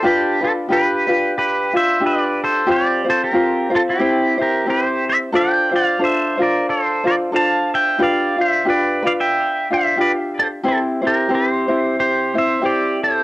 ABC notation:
X:1
M:4/4
L:1/16
Q:"Swing" 1/4=90
K:Gdor
V:1 name="Pedal steel guitar"
[DG]2 [FA]2 [G=B]4 [GB]2 [ce]2 [Bd]2 [Ac]2 | [Gd]2 [Ac] [GB]3 [FA] [EG]3 [GB]2 [Gc]2 [ce]2 | [dg]2 [df]2 [ce]2 [Bd]2 [Ac]2 [Bd]2 [fa]2 [eg]2 | [df]2 [ce]2 [=Bd]2 [df] [eg]3 [ce]2 [Bd]2 [Ac]2 |
[EA]2 [GB]2 [Gc]4 [Gc]2 [ce]2 [Gd]2 [Ac]2 |]
V:2 name="Ukulele"
[DFG=B]2 [DFB]2 [DFGB]2 [DFB]4 [DF]2 [DFG]4 | [CFGc]2 [CFc]2 [CFGc]2 [CFc]2 [CEGc]2 [CEc]2 [CEGc]4 | [DFAc]2 [DFc]2 [DFAc]2 [DFc]4 [DFc]2 [DFAc]4 | [DFG=B]2 [DF]2 [DFGB]2 [DFB]4 [DF]2 [DFG]4 |
[CEGc]2 [CEc]2 [CEGc]2 [CEc]4 [CEc]2 [CEGc]4 |]